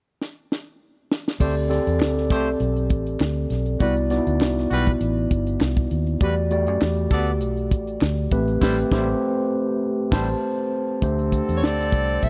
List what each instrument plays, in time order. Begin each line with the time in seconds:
0.22 snare
0.52 snare
1.11 snare
1.28 snare
1.39 fingered electric bass D2, horn section A3 G4 C5, tine electric piano C4 G4 A4 D5, kick, crash
1.69 tine electric piano C4 G4 A4 D5, snare, closed hi-hat
1.87 fingered electric bass E2, closed hi-hat
2.00 fingered electric bass D2, snare, clap
2.17 snare, closed hi-hat
2.30 fingered electric bass C2, horn section A3 G4 C5, kick, closed hi-hat
2.46 closed hi-hat
2.60 fingered electric bass B1, closed hi-hat
2.77 closed hi-hat
2.90 fingered electric bass A1, kick, closed hi-hat
3.07 closed hi-hat
3.20 fingered electric bass D2, snare, clap
3.50 fingered electric bass B1, snare, closed hi-hat
3.66 closed hi-hat
3.80 fingered electric bass C2, horn section G3 F#4 B4, tine electric piano B3 E4 F#4 D5, kick, closed hi-hat
3.97 closed hi-hat
4.10 tine electric piano B3 D#4 F#4 D5, snare, closed hi-hat
4.17 tine electric piano E4
4.27 fingered electric bass D2, closed hi-hat
4.41 fingered electric bass C2, snare, clap
4.58 snare
4.70 fingered electric bass B1, horn section G3 F#4 B4, closed hi-hat
4.87 kick, closed hi-hat
5.01 fingered electric bass A1, closed hi-hat
5.31 fingered electric bass G1, kick, closed hi-hat
5.47 closed hi-hat
5.61 fingered electric bass C2, snare, clap
5.76 kick, closed hi-hat
5.91 fingered electric bass D#2, closed hi-hat
6.07 closed hi-hat
6.21 fingered electric bass E2, horn section G3 F#4 B4, tine electric piano A3 F#4 G4 D5, kick, closed hi-hat
6.51 tine electric piano A3 F#4 G4 D5, closed hi-hat
6.67 fingered electric bass F#2, closed hi-hat
6.81 fingered electric bass E2, snare, clap
6.97 closed hi-hat
7.11 fingered electric bass D2, horn section B3 A4 D5, kick, snare, closed hi-hat
7.27 closed hi-hat
7.41 fingered electric bass B1, closed hi-hat
7.57 closed hi-hat
7.71 fingered electric bass A1, kick, closed hi-hat
7.87 closed hi-hat
8.01 fingered electric bass D2, snare, clap
8.18 closed hi-hat
8.31 fingered electric bass A1, tine electric piano A3 C4 G4 B4, kick, closed hi-hat
8.48 closed hi-hat
8.61 fingered electric bass A1, horn section G3 E4 C5, tine electric piano A3 C4 G4 B4, kick, snare, crash
8.92 fingered electric bass A1, horn section G3 E4 C5, tine electric piano A3 C4 G4 C5, kick, snare
10.12 fingered electric bass A1, horn section G3 E4 C5, tine electric piano C5 A5, kick, snare, crash
11.02 fingered electric bass D2, horn section D3 C4 A4, tine electric piano A3 D4 G4 C5, kick, closed hi-hat
11.19 closed hi-hat
11.32 kick, closed hi-hat
11.49 fingered electric bass E2, closed hi-hat
11.57 soprano saxophone C#5
11.63 fingered electric bass D2, soprano saxophone D5, snare
11.80 snare
11.92 fingered electric bass C2, kick, closed hi-hat
12.09 closed hi-hat
12.23 fingered electric bass B1, soprano saxophone E5, kick, closed hi-hat